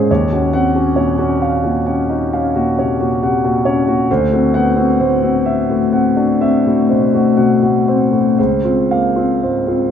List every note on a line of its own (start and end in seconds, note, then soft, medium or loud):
0.00 0.11 G#2 soft
0.00 0.12 A#2 soft
0.00 0.12 C#4 soft
0.00 0.11 D#4 soft
0.00 0.12 G#4 medium
0.00 0.12 C5 soft
0.00 0.12 F5 soft
0.00 0.11 G#5 medium
0.11 4.05 D#2 medium
0.11 0.44 C#5 medium
0.32 0.66 C#4 soft
0.32 0.66 F#4 soft
0.53 0.74 C4 soft
0.53 0.87 F#5 medium
0.75 1.10 C#4 soft
0.75 1.09 F#4 soft
0.95 1.31 A#2 soft
0.95 1.31 C#5 soft
1.18 1.53 C#4 soft
1.18 1.54 F#4 medium
1.42 1.77 F5 medium
1.64 1.99 A#2 soft
1.64 1.99 F#4 soft
1.86 2.22 C#4 soft
1.86 2.22 F#5 soft
2.09 2.31 D#4 soft
2.09 2.46 F#4 soft
2.33 2.69 C#4 soft
2.33 2.69 F5 soft
2.55 2.90 A#2 soft
2.55 2.91 F#4 medium
2.79 3.00 C3 soft
2.79 3.13 C#5 soft
3.00 3.35 A#2 soft
3.00 3.35 F#4 soft
3.23 3.44 C3 soft
3.23 3.57 F#5 medium
3.44 3.78 A#2 soft
3.44 3.78 F#4 soft
3.65 4.00 C#4 soft
3.65 4.00 C#5 medium
3.88 4.09 A#2 soft
3.88 4.09 F#4 medium
4.11 8.35 D2 medium
4.11 4.46 C5 medium
4.33 4.68 C4 soft
4.33 4.68 F#4 soft
4.54 4.77 B3 soft
4.54 4.91 F#5 medium
4.76 5.13 C4 soft
4.76 5.13 F#4 soft
5.00 5.37 A2 soft
5.00 5.37 C5 soft
5.23 5.60 C4 soft
5.23 5.60 F#4 soft
5.46 5.83 E5 soft
5.70 6.07 A2 soft
5.70 6.07 F#4 soft
5.92 6.31 C4 soft
5.92 6.31 F#5 soft
6.16 6.41 D4 soft
6.16 6.55 F#4 soft
6.40 6.79 C4 soft
6.40 6.80 E5 soft
6.66 7.04 A2 soft
6.66 7.04 F#4 soft
6.89 7.13 B2 soft
6.89 7.28 C5 soft
7.14 7.53 A2 soft
7.14 7.52 F#4 soft
7.37 7.62 B2 soft
7.37 7.76 F#5 soft
7.62 8.02 A2 soft
7.62 8.02 F#4 soft
7.88 8.28 C4 soft
7.88 8.28 C5 soft
8.11 8.38 A2 soft
8.11 8.37 F#4 soft
8.38 9.91 C#2 medium
8.38 8.80 C5 soft
8.64 9.07 C4 soft
8.64 9.06 F4 soft
8.91 9.17 A#3 soft
8.91 9.33 F5 medium
9.16 9.59 C4 soft
9.16 9.59 F4 soft
9.43 9.86 G#2 soft
9.43 9.86 C5 soft
9.67 9.91 C4 soft
9.67 9.91 F4 soft